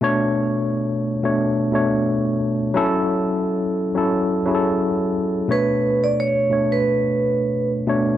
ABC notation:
X:1
M:4/4
L:1/16
Q:"Swing 16ths" 1/4=88
K:Bm
V:1 name="Vibraphone"
z16 | z16 | B3 d c3 B6 z3 |]
V:2 name="Tine electric piano"
[B,,A,Dc]6 z [B,,A,Dc]3 [B,,A,Dc]4- [B,,A,Dc] z | [F,CEA]6 z [F,CEA]3 [F,CE^GA]4- [F,CEGA] z | [B,,A,Dc]4- [B,,A,Dc] z [B,,A,Dc]6- [B,,A,Dc] z [B,,A,Dc]2 |]